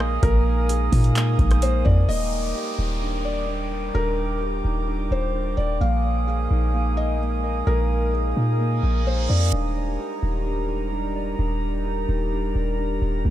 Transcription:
0.00 0.19 A#1 loud
0.00 2.05 G#3 medium
0.00 0.22 A#3 medium
0.00 0.46 D#4 medium
0.00 2.05 D#4 medium
0.00 0.23 G#4 medium
0.00 1.39 A#4 medium
0.00 2.05 A#4 medium
0.00 2.05 F5 medium
0.00 2.05 G#5 medium
0.00 2.05 D#6 medium
0.00 cross-stick loud
0.23 0.90 A#1 loud
0.23 1.15 A#3 medium
0.23 0.67 A#4 loud
0.23 kick loud
0.23 closed hi-hat medium
0.69 2.09 G#4 medium
0.69 closed hi-hat medium
0.92 1.37 A#2 loud
0.92 2.09 D#4 medium
0.92 kick loud
0.92 closed hi-hat medium
0.92 open hi-hat medium
1.04 closed hi-hat medium
1.16 1.61 A#3 medium
1.16 clap loud
1.16 closed hi-hat medium
1.39 1.84 A#1 loud
1.39 kick loud
1.39 closed hi-hat soft
1.51 cross-stick medium
1.51 closed hi-hat medium
1.62 2.07 A#3 medium
1.62 1.85 C5 medium
1.62 closed hi-hat medium
1.85 2.08 F2 loud
1.85 2.09 A#4 medium
1.85 2.07 D5 medium
1.85 kick loud
2.09 2.54 D#1 loud
2.09 5.77 G3 medium
2.09 3.48 A#3 medium
2.09 3.93 D#4 medium
2.09 5.77 A#4 medium
2.09 2.52 D#5 loud
2.09 5.77 G5 medium
2.09 5.77 D6 medium
2.09 downlifter medium
2.55 3.72 G4 medium
2.78 3.91 D#1 loud
2.78 4.18 D#4 medium
3.02 3.47 D4 medium
3.25 3.47 D5 medium
3.49 3.93 D4 medium
3.72 5.11 D5 medium
3.95 4.62 D#1 loud
3.95 4.87 D4 medium
3.95 5.79 F4 medium
3.95 4.38 A#4 loud
4.41 5.81 G4 medium
4.65 5.09 D#1 loud
4.65 5.80 D#4 medium
4.88 5.34 D4 medium
5.11 5.56 D#1 loud
5.11 5.55 C5 medium
5.35 5.81 D4 medium
5.57 5.80 D#1 loud
5.57 5.79 D5 medium
5.57 5.81 D5 medium
5.81 6.48 A#1 loud
5.81 9.49 G#3 medium
5.81 6.73 A#3 medium
5.81 9.49 D#4 medium
5.81 9.49 A#4 medium
5.81 9.49 F5 medium
5.81 6.25 F5 medium
5.81 9.49 G#5 medium
5.81 9.49 D#6 medium
6.27 7.67 G#4 medium
6.51 7.63 A#1 loud
6.51 7.90 D#4 medium
6.74 7.20 A#3 medium
6.97 7.19 D#5 medium
7.21 7.66 A#3 medium
7.44 8.83 A#4 medium
7.67 8.34 A#1 loud
7.67 8.59 A#3 medium
7.67 8.11 A#4 medium
8.13 9.53 G#4 medium
8.37 8.81 A#2 loud
8.37 9.52 D#4 medium
8.60 9.05 A#3 medium
8.60 reverse cymbal medium
8.83 9.28 A#1 loud
9.06 9.53 A#3 medium
9.06 9.29 C5 medium
9.29 9.52 F2 loud
9.29 9.53 A#4 medium
9.29 9.51 D5 medium
9.53 9.98 D#1 loud
9.53 13.21 G3 medium
9.53 10.45 D4 medium
9.53 13.21 D#4 medium
9.53 13.21 G4 medium
9.53 13.21 A#4 medium
9.53 13.21 D5 medium
9.53 13.30 A#5 medium
9.99 11.39 G4 medium
10.22 11.35 D#1 loud
10.22 11.62 D#4 medium
10.46 10.92 D4 medium
10.93 11.38 D4 medium
11.16 12.55 D5 medium
11.39 12.06 D#1 loud
11.39 12.31 D4 medium
11.85 13.25 G4 medium
12.09 12.54 D#1 loud
12.09 13.24 D#4 medium
12.32 12.78 D4 medium
12.55 13.00 D#1 loud
12.79 13.25 D4 medium
13.02 13.24 D#1 loud
13.02 13.25 D5 medium
13.25 13.30 A#1 loud
13.25 13.30 G#3 medium
13.25 13.30 A#3 medium
13.25 13.30 D#4 medium
13.25 13.30 G#4 medium
13.25 13.30 A#4 medium
13.25 13.30 F5 medium

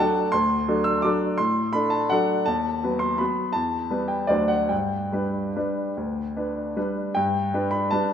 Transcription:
0.00 0.30 F#3 soft
0.00 0.31 D4 soft
0.00 0.31 A4 soft
0.00 0.33 A5 medium
0.32 0.67 D2 soft
0.32 0.85 C6 medium
0.68 1.01 F#3 soft
0.68 1.01 D4 soft
0.68 1.01 A4 soft
0.84 1.04 E6 medium
1.02 1.36 F#3 soft
1.02 1.36 D4 soft
1.02 1.36 A4 soft
1.02 1.39 D6 medium
1.38 1.73 A2 soft
1.38 1.74 C6 medium
1.73 2.07 D4 soft
1.73 2.08 A4 soft
1.73 1.92 B5 medium
1.90 2.10 A5 medium
2.10 2.44 F#3 soft
2.10 2.44 D4 soft
2.10 2.45 A4 soft
2.10 2.47 F#5 medium
2.46 2.82 D#2 soft
2.46 3.01 A5 medium
2.84 3.17 F#3 soft
2.84 3.17 B3 soft
2.84 3.17 B4 soft
2.99 3.19 C6 medium
3.18 3.52 F#3 soft
3.18 3.52 B3 soft
3.18 3.52 B4 soft
3.18 3.54 B5 medium
3.53 3.90 E2 soft
3.53 4.09 A5 medium
3.91 4.26 G3 soft
3.91 4.26 B3 soft
3.91 4.26 B4 soft
4.08 4.29 G5 soft
4.27 4.69 D2 soft
4.27 4.66 F#3 soft
4.27 4.67 D4 soft
4.27 4.67 C5 soft
4.27 4.49 D5 medium
4.48 4.70 F#5 medium
4.69 5.11 G2 soft
4.69 6.76 G5 soft
5.12 5.52 G3 soft
5.12 5.52 D4 soft
5.12 5.52 B4 soft
5.56 5.93 G3 soft
5.56 5.94 D4 soft
5.56 5.94 B4 soft
5.97 6.35 D2 soft
6.37 6.73 D4 soft
6.37 6.73 B4 soft
6.76 7.12 G3 soft
6.76 7.13 D4 soft
6.76 7.13 B4 soft
7.15 7.52 G2 soft
7.15 7.71 G5 medium
7.54 7.87 G3 soft
7.54 7.88 D4 soft
7.54 7.88 B4 soft
7.71 7.90 B5 medium
7.91 8.13 G3 soft
7.91 8.13 D4 soft
7.91 8.13 B4 soft
7.91 8.13 A5 medium

